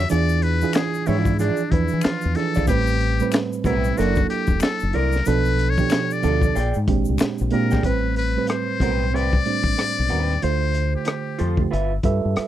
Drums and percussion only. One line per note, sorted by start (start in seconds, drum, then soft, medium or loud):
0.09 closed hi-hat medium
0.09 shaker medium
0.29 shaker soft
0.42 closed hi-hat medium
0.61 shaker soft
0.73 finger snap medium
0.73 closed hi-hat medium
0.73 shaker medium
0.75 finger snap medium
0.75 snare loud
0.94 shaker soft
1.06 open hi-hat soft
1.06 shaker soft
1.25 kick medium
1.25 shaker soft
1.39 closed hi-hat medium
1.39 shaker medium
1.57 shaker soft
1.72 kick medium
1.72 closed hi-hat medium
1.88 shaker soft
2.01 finger snap medium
2.01 closed hi-hat medium
2.01 shaker medium
2.04 finger snap medium
2.04 snare medium
2.21 shaker soft
2.35 snare soft
2.35 closed hi-hat medium
2.54 kick medium
2.54 shaker soft
2.67 kick loud
2.67 closed hi-hat medium
2.67 shaker medium
2.87 shaker soft
3.00 closed hi-hat medium
3.20 shaker soft
3.32 finger snap medium
3.32 closed hi-hat medium
3.32 shaker medium
3.34 finger snap loud
3.34 snare loud
3.53 shaker soft
3.64 kick medium
3.64 closed hi-hat medium
3.64 shaker soft
3.84 shaker soft
3.98 closed hi-hat medium
3.98 shaker medium
4.15 kick medium
4.15 shaker soft
4.30 closed hi-hat medium
4.47 kick medium
4.47 shaker soft
4.60 finger snap medium
4.60 closed hi-hat medium
4.60 shaker medium
4.63 finger snap medium
4.63 snare loud
4.80 shaker soft
4.93 closed hi-hat medium
5.12 snare soft
5.12 shaker soft
5.25 closed hi-hat medium
5.25 shaker medium
5.45 shaker soft
5.59 closed hi-hat medium
5.78 kick medium
5.78 shaker soft
5.90 finger snap medium
5.90 closed hi-hat medium
5.90 shaker medium
5.92 finger snap medium
5.92 snare loud
6.11 shaker soft
6.23 closed hi-hat medium
6.23 shaker soft
6.42 kick medium
6.42 shaker soft
6.56 closed hi-hat medium
6.56 shaker medium
6.74 shaker soft
6.88 kick loud
6.88 closed hi-hat medium
7.05 shaker soft
7.18 finger snap medium
7.18 closed hi-hat medium
7.18 shaker medium
7.20 finger snap medium
7.20 snare loud
7.38 shaker soft
7.50 closed hi-hat medium
7.71 kick medium
7.71 snare soft
7.71 shaker soft
7.83 kick loud
7.83 closed hi-hat medium
8.16 closed hi-hat medium
8.47 cross-stick loud
8.47 closed hi-hat medium
8.80 kick medium
8.80 closed hi-hat medium
9.16 closed hi-hat medium
9.33 kick medium
9.46 closed hi-hat medium
9.64 kick medium
9.78 cross-stick loud
9.78 closed hi-hat medium
10.08 closed hi-hat medium
10.31 cross-stick soft
10.42 closed hi-hat medium
10.74 closed hi-hat medium
11.05 cross-stick loud
11.05 closed hi-hat medium
11.39 closed hi-hat medium
11.57 kick medium
11.73 closed hi-hat medium
12.03 kick medium
12.03 closed hi-hat medium
12.36 cross-stick medium
12.36 closed hi-hat medium